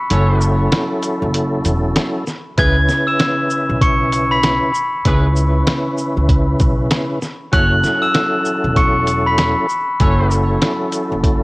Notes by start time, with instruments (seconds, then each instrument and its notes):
0.10 upright bass F#1, tonewheel organ F#3 C#4 E4 A4, horn section C#4 F#4 A4 C#5, closed hi-hat
0.41 shaker
0.72 snare, closed hi-hat
1.03 closed hi-hat, shaker
1.22 upright bass F#1
1.34 closed hi-hat
1.65 upright bass E1, closed hi-hat, shaker
1.96 snare, closed hi-hat
2.27 snare, shaker
2.57 upright bass C#2, tonewheel organ C#3 C#4 E4 B4, horn section B3 E4 G#4 B4, glockenspiel G#6 G#7, kick, closed hi-hat
2.89 snare, shaker
3.07 glockenspiel E6 E7
3.19 snare, closed hi-hat
3.50 shaker
3.70 upright bass B1
3.81 glockenspiel C#6 C#7, kick, closed hi-hat
4.12 closed hi-hat, shaker
4.31 glockenspiel B5 B6
4.43 snare, closed hi-hat
4.74 shaker
5.05 upright bass C#2, tonewheel organ C#3 C#4 E4 B4, horn section B3 E4 G#4 B4, kick, closed hi-hat
5.36 shaker
5.67 snare, closed hi-hat
5.98 shaker
6.17 upright bass C#2
6.29 kick, closed hi-hat
6.60 upright bass B1, kick, closed hi-hat, shaker
6.91 snare, closed hi-hat
7.22 snare, shaker
7.52 upright bass F#1, tonewheel organ F#3 C#4 E4 A4, horn section C#4 F#4 A4 C#5, glockenspiel F#6 F#7, kick, closed hi-hat
7.84 snare, shaker
8.02 glockenspiel E6 E7
8.14 snare, closed hi-hat
8.45 shaker
8.64 upright bass E1
8.76 glockenspiel C#6 C#7, kick, closed hi-hat
9.07 closed hi-hat, shaker
9.26 glockenspiel B5 B6
9.38 snare, closed hi-hat
9.69 shaker
10.00 upright bass F#1, tonewheel organ F#3 C#4 E4 A4, horn section C#4 F#4 A4 C#5, kick, closed hi-hat
10.31 shaker
10.62 snare, closed hi-hat
10.92 closed hi-hat, shaker
11.12 upright bass F#1
11.24 kick, closed hi-hat